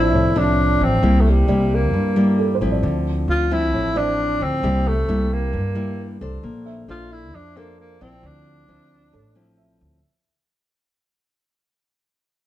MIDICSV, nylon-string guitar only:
0, 0, Header, 1, 2, 480
1, 0, Start_track
1, 0, Key_signature, -1, "minor"
1, 0, Tempo, 450113
1, 1099, Time_signature, 4, 2, 24, 8
1, 13287, End_track
2, 0, Start_track
2, 0, Title_t, "Nylon-string guitar"
2, 0, Program_c, 0, 24
2, 0, Note_on_c, 0, 45, 49
2, 0, Note_on_c, 0, 53, 56
2, 0, Note_on_c, 0, 60, 53
2, 0, Note_on_c, 0, 62, 54
2, 115, Note_off_c, 0, 45, 0
2, 138, Note_on_c, 0, 45, 48
2, 338, Note_off_c, 0, 53, 0
2, 340, Note_off_c, 0, 60, 0
2, 343, Note_off_c, 0, 62, 0
2, 378, Note_on_c, 0, 53, 52
2, 384, Note_on_c, 0, 60, 55
2, 384, Note_on_c, 0, 62, 58
2, 1061, Note_off_c, 0, 53, 0
2, 1063, Note_off_c, 0, 60, 0
2, 1063, Note_off_c, 0, 62, 0
2, 1075, Note_off_c, 0, 45, 0
2, 1095, Note_on_c, 0, 48, 55
2, 1102, Note_on_c, 0, 55, 48
2, 1103, Note_on_c, 0, 58, 53
2, 1108, Note_on_c, 0, 64, 62
2, 1541, Note_off_c, 0, 55, 0
2, 1543, Note_off_c, 0, 58, 0
2, 1545, Note_off_c, 0, 64, 0
2, 1579, Note_on_c, 0, 55, 51
2, 1583, Note_on_c, 0, 58, 47
2, 1588, Note_on_c, 0, 64, 51
2, 2033, Note_off_c, 0, 48, 0
2, 2065, Note_on_c, 0, 43, 52
2, 2261, Note_off_c, 0, 55, 0
2, 2262, Note_off_c, 0, 58, 0
2, 2265, Note_off_c, 0, 64, 0
2, 2304, Note_on_c, 0, 55, 58
2, 2311, Note_on_c, 0, 58, 56
2, 2314, Note_on_c, 0, 64, 61
2, 2744, Note_off_c, 0, 55, 0
2, 2745, Note_off_c, 0, 58, 0
2, 2748, Note_off_c, 0, 64, 0
2, 2787, Note_on_c, 0, 53, 49
2, 2793, Note_on_c, 0, 60, 59
2, 2793, Note_on_c, 0, 64, 59
2, 2998, Note_off_c, 0, 43, 0
2, 3015, Note_on_c, 0, 50, 54
2, 3705, Note_off_c, 0, 53, 0
2, 3706, Note_off_c, 0, 60, 0
2, 3707, Note_off_c, 0, 64, 0
2, 3742, Note_on_c, 0, 53, 55
2, 3746, Note_on_c, 0, 60, 54
2, 3752, Note_on_c, 0, 64, 60
2, 3953, Note_off_c, 0, 50, 0
2, 3976, Note_on_c, 0, 45, 47
2, 4181, Note_off_c, 0, 53, 0
2, 4184, Note_off_c, 0, 60, 0
2, 4186, Note_off_c, 0, 64, 0
2, 4218, Note_on_c, 0, 53, 47
2, 4222, Note_on_c, 0, 60, 54
2, 4226, Note_on_c, 0, 64, 64
2, 4900, Note_off_c, 0, 53, 0
2, 4900, Note_off_c, 0, 60, 0
2, 4903, Note_off_c, 0, 64, 0
2, 4913, Note_off_c, 0, 45, 0
2, 4942, Note_on_c, 0, 48, 54
2, 4947, Note_on_c, 0, 55, 57
2, 4948, Note_on_c, 0, 58, 52
2, 4951, Note_on_c, 0, 64, 67
2, 5250, Note_off_c, 0, 55, 0
2, 5252, Note_off_c, 0, 64, 0
2, 5253, Note_off_c, 0, 58, 0
2, 5423, Note_on_c, 0, 55, 50
2, 5428, Note_on_c, 0, 58, 49
2, 5433, Note_on_c, 0, 64, 51
2, 5876, Note_off_c, 0, 48, 0
2, 5897, Note_off_c, 0, 55, 0
2, 5897, Note_on_c, 0, 43, 47
2, 5900, Note_off_c, 0, 58, 0
2, 5902, Note_off_c, 0, 64, 0
2, 6131, Note_on_c, 0, 55, 59
2, 6136, Note_on_c, 0, 58, 58
2, 6140, Note_on_c, 0, 64, 59
2, 6576, Note_off_c, 0, 55, 0
2, 6578, Note_off_c, 0, 58, 0
2, 6580, Note_off_c, 0, 64, 0
2, 6623, Note_on_c, 0, 62, 59
2, 6627, Note_on_c, 0, 69, 56
2, 6637, Note_on_c, 0, 72, 65
2, 6833, Note_off_c, 0, 43, 0
2, 6865, Note_on_c, 0, 58, 57
2, 7328, Note_off_c, 0, 62, 0
2, 7335, Note_off_c, 0, 69, 0
2, 7335, Note_off_c, 0, 72, 0
2, 7341, Note_on_c, 0, 62, 51
2, 7347, Note_on_c, 0, 69, 52
2, 7350, Note_on_c, 0, 72, 58
2, 7797, Note_off_c, 0, 58, 0
2, 7816, Note_off_c, 0, 62, 0
2, 7818, Note_on_c, 0, 53, 52
2, 7820, Note_off_c, 0, 69, 0
2, 7820, Note_off_c, 0, 72, 0
2, 8068, Note_on_c, 0, 62, 60
2, 8072, Note_on_c, 0, 69, 56
2, 8076, Note_on_c, 0, 72, 60
2, 8505, Note_off_c, 0, 62, 0
2, 8506, Note_off_c, 0, 69, 0
2, 8509, Note_off_c, 0, 72, 0
2, 8531, Note_off_c, 0, 53, 0
2, 8543, Note_on_c, 0, 53, 60
2, 8544, Note_on_c, 0, 60, 61
2, 8549, Note_on_c, 0, 64, 68
2, 8781, Note_on_c, 0, 50, 54
2, 9223, Note_off_c, 0, 53, 0
2, 9223, Note_off_c, 0, 60, 0
2, 9225, Note_off_c, 0, 64, 0
2, 9260, Note_on_c, 0, 53, 51
2, 9265, Note_on_c, 0, 60, 53
2, 9271, Note_on_c, 0, 64, 53
2, 9716, Note_off_c, 0, 50, 0
2, 9736, Note_on_c, 0, 45, 49
2, 9737, Note_off_c, 0, 53, 0
2, 9739, Note_off_c, 0, 60, 0
2, 9741, Note_off_c, 0, 64, 0
2, 9973, Note_on_c, 0, 53, 57
2, 9977, Note_on_c, 0, 60, 52
2, 9981, Note_on_c, 0, 64, 61
2, 10659, Note_off_c, 0, 53, 0
2, 10660, Note_off_c, 0, 60, 0
2, 10662, Note_off_c, 0, 64, 0
2, 10674, Note_off_c, 0, 45, 0
2, 13287, End_track
0, 0, End_of_file